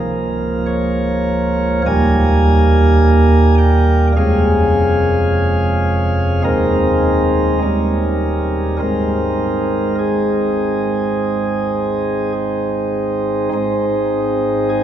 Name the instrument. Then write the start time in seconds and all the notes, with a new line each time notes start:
pipe organ
Already playing: C#1 C#2 F3 A#3 A#4
0.66 C#5
1.86 D#1 D#2 G3 A#3 A#4 G#5
3.58 G5
4.16 F1 F2 G#3 C#4 G#4 F5
6.44 D#1 D#2 G#3 C4 D#4 A#4
7.62 D#1 D#2 G3 C#4 D#4
8.79 G#1 G#2 G#3 C4 D#4 A#4
9.99 G#4
13.53 G#1 G#2 G#3 C4 D#4
14.70 G#4